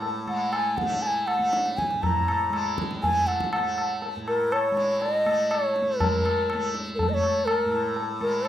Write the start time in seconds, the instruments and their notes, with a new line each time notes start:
Already playing: tanpura A2 G#3 A3
0.02 tabla tin
0.27 tanpura G#3, bansuri F#5, tabla na
0.53 bansuri G#5, tabla na
0.77 bansuri F#5, tabla ke
0.83 tanpura A3
0.90 tabla te
1.02 bansuri A5, tabla tin
1.07 bansuri G#5
1.27 bansuri F#5, tabla na
1.39 tanpura A3
1.53 tabla te
1.66 tabla te
1.77 bansuri G#5, tabla ke
1.91 tanpura A2, tabla te
2.03 bansuri A#5, tabla tin, tabla ge
2.28 tabla na
2.50 tanpura G#3, tabla na
2.78 tabla ke
2.91 tabla te
3.02 tanpura A3, bansuri G#5, tabla tin, tabla ge
3.27 bansuri F#5, tabla na
3.40 tabla ke
3.52 bansuri F#5, tabla na
3.60 tanpura A3
3.78 tabla na
4.02 tabla tin
4.16 tanpura A2
4.28 bansuri A#4, tabla na
4.52 bansuri C#5, tabla na
4.71 tanpura G#3
4.77 tabla te
5.01 bansuri D#5, tabla tin
5.26 tanpura A3, tabla na
5.51 bansuri C#5, tabla na
5.76 tabla te
5.81 tanpura A3
5.99 tanpura G#3, bansuri A#4, tabla tin, tabla ge
6.25 tabla na
6.50 tabla na
6.55 tanpura A3
6.75 tabla te
6.95 bansuri A4 A#4
6.99 tabla tin, tabla ge
7.09 tanpura A3, bansuri D#5
7.14 bansuri C#5
7.23 tabla na
7.45 bansuri A#4, tabla na
7.66 tanpura A2
7.72 tabla na
7.96 tabla tin
8.20 tanpura G#3, bansuri A#4, tabla na
8.45 tabla na